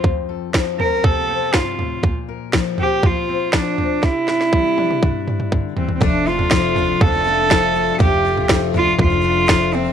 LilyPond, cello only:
\new Staff \with { instrumentName = "Cello" } { \time 4/4 \key d \minor \tempo 4 = 121 r4. bes'8 a'4 f'4 | r4. g'8 f'4 d'4 | e'2. r8 c'16. c'32 | d'8 f'4. a'2 |
g'4 r8 f'8 f'4. c'8 | }